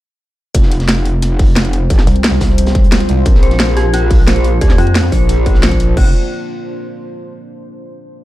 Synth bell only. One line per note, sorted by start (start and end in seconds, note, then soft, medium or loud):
3.43 3.48 C5 medium
3.77 3.90 G4 loud
3.94 3.99 F4 loud
4.27 4.33 C5 medium
4.61 4.75 G4 loud
4.78 4.84 F4 loud
5.12 5.17 C5 medium
5.46 5.51 F4 medium
5.63 5.72 C5 medium
5.97 6.13 F4 loud